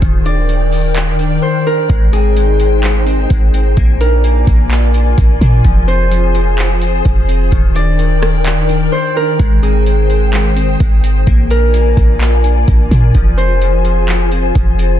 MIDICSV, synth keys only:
0, 0, Header, 1, 2, 480
1, 0, Start_track
1, 0, Tempo, 468750
1, 22, Time_signature, 4, 2, 24, 8
1, 15358, End_track
2, 0, Start_track
2, 0, Title_t, "Synth keys"
2, 0, Program_c, 0, 88
2, 18, Note_on_c, 0, 51, 100
2, 255, Note_on_c, 0, 62, 76
2, 489, Note_off_c, 0, 51, 0
2, 501, Note_on_c, 0, 51, 79
2, 729, Note_off_c, 0, 51, 0
2, 742, Note_on_c, 0, 51, 78
2, 972, Note_off_c, 0, 51, 0
2, 984, Note_on_c, 0, 51, 87
2, 1213, Note_off_c, 0, 62, 0
2, 1225, Note_on_c, 0, 62, 81
2, 1450, Note_off_c, 0, 51, 0
2, 1462, Note_on_c, 0, 51, 76
2, 1688, Note_off_c, 0, 62, 0
2, 1700, Note_on_c, 0, 62, 75
2, 1939, Note_on_c, 0, 56, 100
2, 1941, Note_off_c, 0, 62, 0
2, 1942, Note_off_c, 0, 51, 0
2, 2176, Note_on_c, 0, 60, 81
2, 2409, Note_off_c, 0, 56, 0
2, 2421, Note_on_c, 0, 56, 82
2, 2645, Note_off_c, 0, 56, 0
2, 2658, Note_on_c, 0, 56, 77
2, 2887, Note_off_c, 0, 56, 0
2, 2900, Note_on_c, 0, 56, 89
2, 3123, Note_off_c, 0, 60, 0
2, 3136, Note_on_c, 0, 60, 88
2, 3368, Note_off_c, 0, 56, 0
2, 3380, Note_on_c, 0, 56, 81
2, 3612, Note_off_c, 0, 60, 0
2, 3624, Note_on_c, 0, 60, 78
2, 3860, Note_on_c, 0, 58, 101
2, 3861, Note_off_c, 0, 56, 0
2, 3863, Note_off_c, 0, 60, 0
2, 4099, Note_on_c, 0, 62, 82
2, 4331, Note_off_c, 0, 58, 0
2, 4344, Note_on_c, 0, 58, 89
2, 4570, Note_off_c, 0, 58, 0
2, 4583, Note_on_c, 0, 58, 84
2, 4811, Note_off_c, 0, 58, 0
2, 4823, Note_on_c, 0, 58, 87
2, 5052, Note_off_c, 0, 62, 0
2, 5064, Note_on_c, 0, 62, 77
2, 5291, Note_off_c, 0, 58, 0
2, 5303, Note_on_c, 0, 58, 75
2, 5536, Note_off_c, 0, 62, 0
2, 5548, Note_on_c, 0, 62, 83
2, 5782, Note_off_c, 0, 58, 0
2, 5783, Note_on_c, 0, 53, 97
2, 5785, Note_off_c, 0, 62, 0
2, 6018, Note_on_c, 0, 60, 80
2, 6247, Note_off_c, 0, 53, 0
2, 6259, Note_on_c, 0, 53, 91
2, 6485, Note_off_c, 0, 53, 0
2, 6497, Note_on_c, 0, 53, 84
2, 6727, Note_off_c, 0, 53, 0
2, 6740, Note_on_c, 0, 53, 92
2, 6972, Note_off_c, 0, 60, 0
2, 6985, Note_on_c, 0, 60, 74
2, 7206, Note_off_c, 0, 53, 0
2, 7218, Note_on_c, 0, 53, 75
2, 7446, Note_off_c, 0, 60, 0
2, 7458, Note_on_c, 0, 60, 79
2, 7698, Note_on_c, 0, 51, 106
2, 7700, Note_off_c, 0, 53, 0
2, 7700, Note_off_c, 0, 60, 0
2, 7934, Note_on_c, 0, 62, 80
2, 8168, Note_off_c, 0, 51, 0
2, 8180, Note_on_c, 0, 51, 81
2, 8409, Note_off_c, 0, 51, 0
2, 8421, Note_on_c, 0, 51, 78
2, 8650, Note_off_c, 0, 51, 0
2, 8662, Note_on_c, 0, 51, 86
2, 8892, Note_off_c, 0, 62, 0
2, 8904, Note_on_c, 0, 62, 78
2, 9129, Note_off_c, 0, 51, 0
2, 9141, Note_on_c, 0, 51, 77
2, 9368, Note_off_c, 0, 62, 0
2, 9380, Note_on_c, 0, 62, 78
2, 9619, Note_on_c, 0, 56, 104
2, 9621, Note_off_c, 0, 51, 0
2, 9621, Note_off_c, 0, 62, 0
2, 9857, Note_on_c, 0, 60, 83
2, 10089, Note_off_c, 0, 56, 0
2, 10101, Note_on_c, 0, 56, 83
2, 10324, Note_off_c, 0, 56, 0
2, 10336, Note_on_c, 0, 56, 80
2, 10567, Note_off_c, 0, 56, 0
2, 10579, Note_on_c, 0, 56, 88
2, 10803, Note_off_c, 0, 60, 0
2, 10815, Note_on_c, 0, 60, 86
2, 11047, Note_off_c, 0, 56, 0
2, 11059, Note_on_c, 0, 56, 78
2, 11291, Note_off_c, 0, 60, 0
2, 11303, Note_on_c, 0, 60, 80
2, 11539, Note_on_c, 0, 58, 97
2, 11540, Note_off_c, 0, 56, 0
2, 11542, Note_off_c, 0, 60, 0
2, 11779, Note_on_c, 0, 62, 86
2, 12010, Note_off_c, 0, 58, 0
2, 12022, Note_on_c, 0, 58, 81
2, 12250, Note_off_c, 0, 58, 0
2, 12263, Note_on_c, 0, 58, 76
2, 12490, Note_off_c, 0, 58, 0
2, 12502, Note_on_c, 0, 58, 92
2, 12731, Note_off_c, 0, 62, 0
2, 12743, Note_on_c, 0, 62, 75
2, 12970, Note_off_c, 0, 58, 0
2, 12982, Note_on_c, 0, 58, 73
2, 13216, Note_off_c, 0, 62, 0
2, 13228, Note_on_c, 0, 62, 81
2, 13462, Note_off_c, 0, 58, 0
2, 13463, Note_on_c, 0, 53, 99
2, 13465, Note_off_c, 0, 62, 0
2, 13698, Note_on_c, 0, 60, 82
2, 13927, Note_off_c, 0, 53, 0
2, 13939, Note_on_c, 0, 53, 89
2, 14165, Note_off_c, 0, 53, 0
2, 14177, Note_on_c, 0, 53, 80
2, 14407, Note_off_c, 0, 53, 0
2, 14420, Note_on_c, 0, 53, 92
2, 14654, Note_off_c, 0, 60, 0
2, 14666, Note_on_c, 0, 60, 73
2, 14886, Note_off_c, 0, 53, 0
2, 14899, Note_on_c, 0, 53, 75
2, 15126, Note_off_c, 0, 60, 0
2, 15139, Note_on_c, 0, 60, 79
2, 15358, Note_off_c, 0, 53, 0
2, 15358, Note_off_c, 0, 60, 0
2, 15358, End_track
0, 0, End_of_file